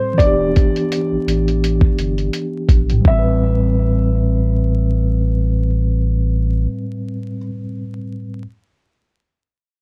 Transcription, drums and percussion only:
0.19 kick, closed hi-hat
0.56 kick, closed hi-hat
0.76 closed hi-hat
0.92 closed hi-hat
1.28 closed hi-hat
1.48 closed hi-hat
1.64 closed hi-hat
1.81 kick
1.98 closed hi-hat
2.18 closed hi-hat
2.33 closed hi-hat
2.69 kick, closed hi-hat
2.90 closed hi-hat
3.05 kick

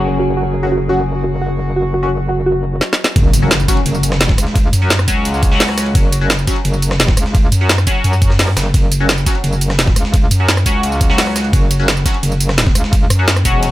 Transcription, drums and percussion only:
2.81 snare
2.93 snare
3.04 snare
3.16 kick, closed hi-hat, ride
3.33 closed hi-hat, ride, tambourine
3.51 snare, closed hi-hat, ride
3.60 tambourine
3.68 kick, snare, closed hi-hat, ride, tambourine
3.77 ride
3.86 closed hi-hat, ride
3.95 tambourine
4.03 closed hi-hat, ride, tambourine
4.12 cross-stick, snare
4.21 snare, closed hi-hat, ride
4.29 kick, snare
4.38 cross-stick, closed hi-hat, ride, tambourine
4.47 snare
4.55 kick, closed hi-hat, ride
4.73 closed hi-hat, ride, tambourine
4.90 snare, closed hi-hat, ride
4.99 cross-stick, tambourine
5.08 kick, closed hi-hat, ride, tambourine
5.25 closed hi-hat, ride
5.34 tambourine
5.43 kick, closed hi-hat, ride, tambourine
5.52 snare
5.60 snare, closed hi-hat, open hi-hat
5.69 cross-stick
5.78 cross-stick, snare, closed hi-hat, ride, tambourine
5.86 ride
5.95 kick, closed hi-hat, ride
6.12 closed hi-hat, ride, tambourine
6.30 snare, closed hi-hat, ride
6.39 tambourine
6.47 kick, snare, closed hi-hat, ride, tambourine
6.56 ride
6.65 closed hi-hat, ride
6.74 tambourine
6.82 closed hi-hat, ride, tambourine
6.91 cross-stick, snare
7.00 snare, closed hi-hat, ride
7.08 kick, snare
7.17 cross-stick, closed hi-hat, ride, tambourine
7.26 snare
7.35 kick, closed hi-hat, ride
7.52 closed hi-hat, ride, tambourine
7.69 snare, closed hi-hat, ride
7.78 cross-stick, tambourine
7.87 kick, closed hi-hat, ride, tambourine
8.04 closed hi-hat, ride
8.13 tambourine
8.22 kick, closed hi-hat, ride, tambourine
8.30 snare
8.39 snare, closed hi-hat, open hi-hat
8.48 cross-stick
8.57 cross-stick, snare, closed hi-hat, ride, tambourine
8.74 kick, closed hi-hat, ride
8.92 closed hi-hat, ride, tambourine
9.09 snare, closed hi-hat, ride
9.18 tambourine
9.26 kick, snare, closed hi-hat, ride, tambourine
9.35 ride
9.44 closed hi-hat, ride
9.53 tambourine
9.61 closed hi-hat, ride, tambourine
9.70 cross-stick, snare
9.79 snare, closed hi-hat, ride
9.88 kick, snare
9.96 cross-stick, closed hi-hat, ride, tambourine
10.05 snare
10.14 kick, closed hi-hat, ride
10.31 closed hi-hat, ride, tambourine
10.48 snare, closed hi-hat, ride
10.57 cross-stick, tambourine
10.66 kick, closed hi-hat, ride, tambourine
10.83 closed hi-hat, ride
10.92 tambourine
11.01 kick, closed hi-hat, ride, tambourine
11.10 snare
11.18 snare, closed hi-hat, open hi-hat
11.27 cross-stick
11.36 cross-stick, snare, closed hi-hat, ride, tambourine
11.45 ride
11.53 kick, closed hi-hat, ride
11.71 closed hi-hat, ride, tambourine
11.88 snare, closed hi-hat, ride
11.97 tambourine
12.06 kick, snare, closed hi-hat, ride, tambourine
12.14 ride
12.23 closed hi-hat, ride
12.32 tambourine
12.40 closed hi-hat, ride, tambourine
12.49 cross-stick, snare
12.58 snare, closed hi-hat, ride
12.67 kick, snare
12.75 cross-stick, closed hi-hat, ride, tambourine
12.84 snare
12.93 kick, closed hi-hat, ride
13.10 cross-stick, closed hi-hat, ride, tambourine
13.28 snare, closed hi-hat, ride
13.36 cross-stick, tambourine
13.45 kick, closed hi-hat, ride, tambourine
13.63 closed hi-hat, ride

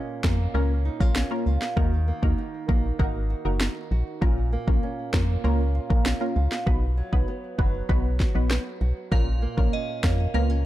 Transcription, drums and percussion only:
0.24 kick, snare
1.00 kick
1.16 snare
1.62 snare
1.77 kick
2.23 kick
2.69 kick
3.00 kick
3.61 snare
4.22 kick
4.68 kick
5.14 kick, snare
5.90 kick
6.06 snare
6.52 snare
6.67 kick
7.13 kick
7.59 kick
7.89 kick
8.20 kick, snare
8.51 cross-stick, snare
9.12 kick
9.58 kick
10.04 kick, snare

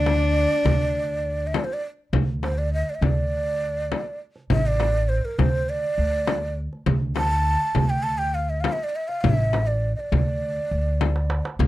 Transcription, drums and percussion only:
0.06 darbuka tek, frame drum
0.66 frame drum, darbuka dum
0.80 darbuka ka
1.25 darbuka ka
1.54 darbuka tek, frame drum
2.13 frame drum, darbuka dum
2.29 darbuka ka
2.43 darbuka tek, frame drum
3.02 frame drum, darbuka dum
3.92 darbuka tek, frame drum
4.36 darbuka ka
4.50 frame drum, darbuka dum
4.65 darbuka ka
4.80 darbuka tek, frame drum
5.39 darbuka dum, frame drum
6.27 darbuka tek, frame drum
6.73 darbuka ka
6.86 frame drum, darbuka dum
7.02 darbuka ka
7.16 darbuka tek, frame drum
7.75 frame drum, darbuka dum
8.64 darbuka tek, frame drum
9.09 darbuka ka
9.24 darbuka dum, frame drum
9.39 darbuka ka
9.53 darbuka tek, frame drum
9.99 darbuka ka
10.12 frame drum, darbuka dum
10.72 darbuka ka
11.01 darbuka tek, frame drum
11.16 darbuka ka
11.30 darbuka tek
11.45 darbuka ka
11.60 darbuka dum, frame drum

